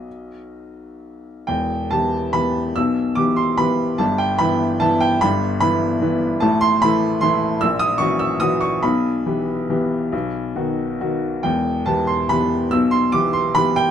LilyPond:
<<
  \new Staff \with { instrumentName = "Upright piano" } { \time 3/4 \key e \minor \tempo 4 = 143 dis''2 r4 | g''4 a''4 b''4 | e'''4 d'''8 c'''8 b''4 | a''8 g''8 b''4 a''8 g''8 |
b''4 b''4. r8 | a''8 c'''8 b''4 c'''4 | e'''8 dis'''8 cis'''8 e'''8 dis'''8 cis'''8 | b''2.~ |
b''2 r4 | g''4 a''8 c'''8 b''4 | e'''8 c'''8 d'''8 c'''8 b''8 g''8 | }
  \new Staff \with { instrumentName = "Upright piano" } { \clef bass \time 3/4 \key e \minor <b,, fis b fis'>2. | <e,, e,>4 <e b g'>4 <e b g'>4 | <b,, b,>4 <e b g'>4 <e b g'>4 | <g,, g,>4 <e b e'>4 <e b e'>4 |
<g,, g,>4 <e b e'>4 <e b e'>4 | <a,, a,>4 <e a e'>4 <e a e'>4 | <ais,, ais,>4 <e cis' fis'>4 <e cis' fis'>4 | <b,, b,>4 <e b g'>4 <e b g'>4 |
<b,, b,>4 <dis b fis'>4 <dis b fis'>4 | <e,, e,>4 <e b g'>4 <e b g'>4 | <b,, b,>4 <e b g'>4 <e b g'>4 | }
>>